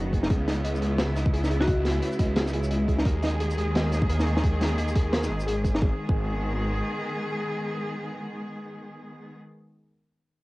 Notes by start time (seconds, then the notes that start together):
Already playing: F#1 D#3 F#3 B3 D#4 F#4
0.13 G#4, kick, closed hi-hat
0.23 snare
0.30 C#2 C#3 G#3 E4 G#4, kick, closed hi-hat
0.48 G#4, snare, closed hi-hat
0.53 closed hi-hat
0.64 D#5, closed hi-hat
0.75 shaker
0.81 C#2 G#4, closed hi-hat
0.98 B4, snare, closed hi-hat
1.16 D#5, snare, closed hi-hat, shaker
1.26 kick
1.33 G#4, closed hi-hat
1.44 snare, shaker
1.50 C#2 G#4, closed hi-hat
1.61 F#4, snare
1.68 D#5, kick, closed hi-hat
1.85 G#4, snare, closed hi-hat
1.90 closed hi-hat
2.02 B4, closed hi-hat
2.12 shaker
2.19 C#2 D#5, kick, closed hi-hat
2.36 G#4, snare, closed hi-hat
2.46 snare, shaker
2.53 G#4, closed hi-hat
2.64 shaker
2.71 D#5, closed hi-hat
2.88 C#2 G#4, kick, closed hi-hat
2.99 snare
3.06 D#2 D#3 A#3 G#4 A#4, kick, closed hi-hat
3.23 D#5, snare, closed hi-hat
3.28 closed hi-hat
3.40 G#4, closed hi-hat
3.51 shaker
3.57 D#2 G#4, closed hi-hat
3.75 D#5, snare, closed hi-hat
3.92 G#4, snare, closed hi-hat, shaker
4.02 kick
4.09 A#4, closed hi-hat
4.20 snare, shaker
4.26 D#2 D#5, closed hi-hat
4.37 snare
4.44 G#4, kick, closed hi-hat
4.61 G#4, snare, closed hi-hat
4.66 closed hi-hat
4.78 D#2 D#5, closed hi-hat
4.88 shaker
4.95 G#4, kick, closed hi-hat
5.12 A#4, snare, closed hi-hat
5.23 snare, shaker
5.30 G#1 D#5
5.40 shaker
5.47 G#4, closed hi-hat
5.64 G#4, kick, closed hi-hat, shaker
5.75 snare
5.81 G#1 D#3 G#3 B3 G#4, kick
6.09 G#1 G#4, kick